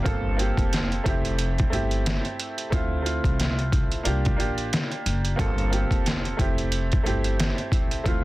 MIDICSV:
0, 0, Header, 1, 4, 480
1, 0, Start_track
1, 0, Tempo, 666667
1, 41, Time_signature, 4, 2, 24, 8
1, 5934, End_track
2, 0, Start_track
2, 0, Title_t, "Upright piano"
2, 0, Program_c, 0, 0
2, 0, Control_c, 0, 64, 127
2, 21, Note_on_c, 0, 58, 86
2, 31, Note_on_c, 0, 60, 76
2, 40, Note_on_c, 0, 65, 80
2, 49, Note_on_c, 0, 69, 99
2, 52, Control_c, 0, 64, 0
2, 183, Control_c, 0, 64, 127
2, 236, Note_off_c, 0, 58, 0
2, 241, Note_off_c, 0, 60, 0
2, 245, Note_off_c, 0, 65, 0
2, 250, Note_off_c, 0, 69, 0
2, 264, Note_on_c, 0, 58, 90
2, 274, Note_on_c, 0, 60, 79
2, 283, Note_on_c, 0, 65, 70
2, 292, Note_on_c, 0, 67, 88
2, 744, Note_off_c, 0, 60, 0
2, 746, Note_on_c, 0, 57, 97
2, 753, Note_off_c, 0, 58, 0
2, 755, Note_on_c, 0, 60, 84
2, 762, Note_off_c, 0, 65, 0
2, 763, Note_off_c, 0, 67, 0
2, 765, Note_on_c, 0, 64, 86
2, 770, Control_c, 0, 64, 0
2, 774, Note_on_c, 0, 67, 101
2, 915, Control_c, 0, 64, 127
2, 1163, Note_off_c, 0, 57, 0
2, 1168, Note_off_c, 0, 60, 0
2, 1173, Note_off_c, 0, 64, 0
2, 1177, Note_off_c, 0, 67, 0
2, 1224, Note_on_c, 0, 57, 88
2, 1234, Note_on_c, 0, 60, 79
2, 1243, Note_on_c, 0, 64, 89
2, 1252, Note_on_c, 0, 67, 95
2, 1846, Note_off_c, 0, 57, 0
2, 1851, Note_off_c, 0, 60, 0
2, 1856, Note_off_c, 0, 64, 0
2, 1861, Note_off_c, 0, 67, 0
2, 1945, Note_on_c, 0, 57, 88
2, 1955, Note_on_c, 0, 60, 82
2, 1964, Note_on_c, 0, 64, 88
2, 1970, Control_c, 0, 64, 0
2, 1974, Note_on_c, 0, 65, 103
2, 2097, Control_c, 0, 64, 127
2, 2158, Note_off_c, 0, 57, 0
2, 2163, Note_off_c, 0, 60, 0
2, 2168, Note_off_c, 0, 64, 0
2, 2172, Note_off_c, 0, 65, 0
2, 2176, Note_on_c, 0, 57, 80
2, 2185, Note_on_c, 0, 60, 72
2, 2195, Note_on_c, 0, 64, 77
2, 2204, Note_on_c, 0, 65, 90
2, 2903, Note_on_c, 0, 58, 88
2, 2908, Note_off_c, 0, 57, 0
2, 2911, Note_off_c, 0, 65, 0
2, 2912, Note_on_c, 0, 62, 89
2, 2913, Note_off_c, 0, 60, 0
2, 2918, Note_off_c, 0, 64, 0
2, 2921, Note_on_c, 0, 65, 81
2, 2931, Control_c, 0, 64, 0
2, 2931, Note_on_c, 0, 67, 102
2, 3065, Control_c, 0, 64, 127
2, 3117, Note_off_c, 0, 58, 0
2, 3122, Note_off_c, 0, 62, 0
2, 3126, Note_off_c, 0, 65, 0
2, 3131, Note_off_c, 0, 67, 0
2, 3139, Note_on_c, 0, 58, 87
2, 3148, Note_on_c, 0, 62, 80
2, 3157, Note_on_c, 0, 65, 79
2, 3167, Note_on_c, 0, 67, 94
2, 3764, Note_off_c, 0, 58, 0
2, 3769, Note_off_c, 0, 62, 0
2, 3773, Note_off_c, 0, 65, 0
2, 3778, Note_off_c, 0, 67, 0
2, 3860, Note_on_c, 0, 58, 88
2, 3869, Note_on_c, 0, 60, 79
2, 3879, Note_on_c, 0, 65, 79
2, 3888, Note_on_c, 0, 69, 100
2, 3889, Control_c, 0, 64, 0
2, 4030, Control_c, 0, 64, 127
2, 4075, Note_off_c, 0, 58, 0
2, 4080, Note_off_c, 0, 60, 0
2, 4085, Note_off_c, 0, 65, 0
2, 4089, Note_off_c, 0, 69, 0
2, 4104, Note_on_c, 0, 58, 85
2, 4114, Note_on_c, 0, 60, 76
2, 4124, Note_on_c, 0, 65, 71
2, 4133, Note_on_c, 0, 67, 86
2, 4585, Note_off_c, 0, 60, 0
2, 4587, Note_on_c, 0, 57, 93
2, 4593, Note_off_c, 0, 58, 0
2, 4596, Note_on_c, 0, 60, 85
2, 4602, Note_off_c, 0, 65, 0
2, 4604, Note_off_c, 0, 67, 0
2, 4605, Note_on_c, 0, 64, 85
2, 4611, Control_c, 0, 64, 0
2, 4615, Note_on_c, 0, 67, 101
2, 4729, Control_c, 0, 64, 127
2, 5004, Note_off_c, 0, 57, 0
2, 5008, Note_off_c, 0, 60, 0
2, 5013, Note_off_c, 0, 64, 0
2, 5018, Note_off_c, 0, 67, 0
2, 5065, Note_on_c, 0, 57, 87
2, 5073, Note_on_c, 0, 60, 80
2, 5083, Note_on_c, 0, 64, 84
2, 5092, Note_on_c, 0, 67, 94
2, 5687, Note_off_c, 0, 57, 0
2, 5691, Note_off_c, 0, 60, 0
2, 5696, Note_off_c, 0, 64, 0
2, 5701, Note_off_c, 0, 67, 0
2, 5786, Note_on_c, 0, 57, 88
2, 5795, Note_on_c, 0, 60, 78
2, 5804, Note_on_c, 0, 64, 84
2, 5811, Control_c, 0, 64, 0
2, 5814, Note_on_c, 0, 65, 99
2, 5934, Note_off_c, 0, 57, 0
2, 5934, Note_off_c, 0, 60, 0
2, 5934, Note_off_c, 0, 64, 0
2, 5934, Note_off_c, 0, 65, 0
2, 5934, End_track
3, 0, Start_track
3, 0, Title_t, "Upright bass"
3, 0, Program_c, 1, 32
3, 41, Note_on_c, 1, 31, 99
3, 365, Note_off_c, 1, 31, 0
3, 414, Note_on_c, 1, 29, 81
3, 711, Note_off_c, 1, 29, 0
3, 762, Note_on_c, 1, 29, 100
3, 1174, Note_off_c, 1, 29, 0
3, 1242, Note_on_c, 1, 31, 88
3, 1565, Note_off_c, 1, 31, 0
3, 1961, Note_on_c, 1, 38, 105
3, 2285, Note_off_c, 1, 38, 0
3, 2334, Note_on_c, 1, 36, 95
3, 2748, Note_off_c, 1, 36, 0
3, 2922, Note_on_c, 1, 36, 95
3, 3162, Note_off_c, 1, 36, 0
3, 3162, Note_on_c, 1, 33, 93
3, 3368, Note_off_c, 1, 33, 0
3, 3642, Note_on_c, 1, 30, 90
3, 3848, Note_off_c, 1, 30, 0
3, 3881, Note_on_c, 1, 31, 103
3, 4205, Note_off_c, 1, 31, 0
3, 4254, Note_on_c, 1, 29, 79
3, 4551, Note_off_c, 1, 29, 0
3, 4601, Note_on_c, 1, 29, 94
3, 5014, Note_off_c, 1, 29, 0
3, 5082, Note_on_c, 1, 31, 91
3, 5405, Note_off_c, 1, 31, 0
3, 5801, Note_on_c, 1, 38, 100
3, 5934, Note_off_c, 1, 38, 0
3, 5934, End_track
4, 0, Start_track
4, 0, Title_t, "Drums"
4, 40, Note_on_c, 9, 36, 104
4, 43, Note_on_c, 9, 42, 81
4, 112, Note_off_c, 9, 36, 0
4, 115, Note_off_c, 9, 42, 0
4, 283, Note_on_c, 9, 42, 76
4, 355, Note_off_c, 9, 42, 0
4, 414, Note_on_c, 9, 36, 87
4, 422, Note_on_c, 9, 42, 50
4, 486, Note_off_c, 9, 36, 0
4, 494, Note_off_c, 9, 42, 0
4, 524, Note_on_c, 9, 42, 96
4, 534, Note_on_c, 9, 38, 121
4, 596, Note_off_c, 9, 42, 0
4, 606, Note_off_c, 9, 38, 0
4, 662, Note_on_c, 9, 42, 35
4, 734, Note_off_c, 9, 42, 0
4, 761, Note_on_c, 9, 36, 90
4, 764, Note_on_c, 9, 42, 83
4, 833, Note_off_c, 9, 36, 0
4, 836, Note_off_c, 9, 42, 0
4, 899, Note_on_c, 9, 42, 58
4, 971, Note_off_c, 9, 42, 0
4, 997, Note_on_c, 9, 42, 100
4, 1069, Note_off_c, 9, 42, 0
4, 1140, Note_on_c, 9, 42, 36
4, 1150, Note_on_c, 9, 36, 90
4, 1212, Note_off_c, 9, 42, 0
4, 1222, Note_off_c, 9, 36, 0
4, 1247, Note_on_c, 9, 42, 74
4, 1319, Note_off_c, 9, 42, 0
4, 1376, Note_on_c, 9, 42, 53
4, 1448, Note_off_c, 9, 42, 0
4, 1485, Note_on_c, 9, 42, 84
4, 1490, Note_on_c, 9, 38, 107
4, 1557, Note_off_c, 9, 42, 0
4, 1562, Note_off_c, 9, 38, 0
4, 1619, Note_on_c, 9, 42, 37
4, 1691, Note_off_c, 9, 42, 0
4, 1724, Note_on_c, 9, 42, 81
4, 1796, Note_off_c, 9, 42, 0
4, 1858, Note_on_c, 9, 42, 59
4, 1930, Note_off_c, 9, 42, 0
4, 1960, Note_on_c, 9, 36, 107
4, 1964, Note_on_c, 9, 42, 83
4, 2032, Note_off_c, 9, 36, 0
4, 2036, Note_off_c, 9, 42, 0
4, 2204, Note_on_c, 9, 42, 77
4, 2276, Note_off_c, 9, 42, 0
4, 2334, Note_on_c, 9, 36, 90
4, 2342, Note_on_c, 9, 42, 50
4, 2406, Note_off_c, 9, 36, 0
4, 2414, Note_off_c, 9, 42, 0
4, 2445, Note_on_c, 9, 42, 97
4, 2455, Note_on_c, 9, 38, 117
4, 2517, Note_off_c, 9, 42, 0
4, 2527, Note_off_c, 9, 38, 0
4, 2582, Note_on_c, 9, 42, 36
4, 2654, Note_off_c, 9, 42, 0
4, 2681, Note_on_c, 9, 36, 90
4, 2685, Note_on_c, 9, 42, 80
4, 2753, Note_off_c, 9, 36, 0
4, 2757, Note_off_c, 9, 42, 0
4, 2819, Note_on_c, 9, 42, 57
4, 2891, Note_off_c, 9, 42, 0
4, 2918, Note_on_c, 9, 42, 99
4, 2990, Note_off_c, 9, 42, 0
4, 3061, Note_on_c, 9, 42, 35
4, 3070, Note_on_c, 9, 36, 91
4, 3133, Note_off_c, 9, 42, 0
4, 3142, Note_off_c, 9, 36, 0
4, 3167, Note_on_c, 9, 42, 73
4, 3239, Note_off_c, 9, 42, 0
4, 3296, Note_on_c, 9, 42, 53
4, 3368, Note_off_c, 9, 42, 0
4, 3405, Note_on_c, 9, 42, 86
4, 3410, Note_on_c, 9, 38, 105
4, 3477, Note_off_c, 9, 42, 0
4, 3482, Note_off_c, 9, 38, 0
4, 3539, Note_on_c, 9, 42, 38
4, 3611, Note_off_c, 9, 42, 0
4, 3645, Note_on_c, 9, 42, 79
4, 3717, Note_off_c, 9, 42, 0
4, 3777, Note_on_c, 9, 42, 56
4, 3849, Note_off_c, 9, 42, 0
4, 3880, Note_on_c, 9, 36, 110
4, 3884, Note_on_c, 9, 42, 77
4, 3952, Note_off_c, 9, 36, 0
4, 3956, Note_off_c, 9, 42, 0
4, 4019, Note_on_c, 9, 42, 36
4, 4091, Note_off_c, 9, 42, 0
4, 4123, Note_on_c, 9, 42, 74
4, 4195, Note_off_c, 9, 42, 0
4, 4253, Note_on_c, 9, 36, 87
4, 4262, Note_on_c, 9, 42, 49
4, 4325, Note_off_c, 9, 36, 0
4, 4334, Note_off_c, 9, 42, 0
4, 4364, Note_on_c, 9, 42, 95
4, 4374, Note_on_c, 9, 38, 117
4, 4436, Note_off_c, 9, 42, 0
4, 4446, Note_off_c, 9, 38, 0
4, 4502, Note_on_c, 9, 42, 36
4, 4574, Note_off_c, 9, 42, 0
4, 4601, Note_on_c, 9, 36, 92
4, 4604, Note_on_c, 9, 42, 77
4, 4673, Note_off_c, 9, 36, 0
4, 4676, Note_off_c, 9, 42, 0
4, 4739, Note_on_c, 9, 42, 57
4, 4811, Note_off_c, 9, 42, 0
4, 4837, Note_on_c, 9, 42, 98
4, 4909, Note_off_c, 9, 42, 0
4, 4980, Note_on_c, 9, 42, 36
4, 4989, Note_on_c, 9, 36, 95
4, 5052, Note_off_c, 9, 42, 0
4, 5061, Note_off_c, 9, 36, 0
4, 5086, Note_on_c, 9, 42, 71
4, 5158, Note_off_c, 9, 42, 0
4, 5215, Note_on_c, 9, 42, 55
4, 5287, Note_off_c, 9, 42, 0
4, 5325, Note_on_c, 9, 42, 85
4, 5330, Note_on_c, 9, 38, 108
4, 5397, Note_off_c, 9, 42, 0
4, 5402, Note_off_c, 9, 38, 0
4, 5459, Note_on_c, 9, 42, 36
4, 5531, Note_off_c, 9, 42, 0
4, 5557, Note_on_c, 9, 36, 92
4, 5564, Note_on_c, 9, 42, 79
4, 5629, Note_off_c, 9, 36, 0
4, 5636, Note_off_c, 9, 42, 0
4, 5697, Note_on_c, 9, 42, 56
4, 5769, Note_off_c, 9, 42, 0
4, 5800, Note_on_c, 9, 36, 110
4, 5804, Note_on_c, 9, 42, 80
4, 5872, Note_off_c, 9, 36, 0
4, 5876, Note_off_c, 9, 42, 0
4, 5934, End_track
0, 0, End_of_file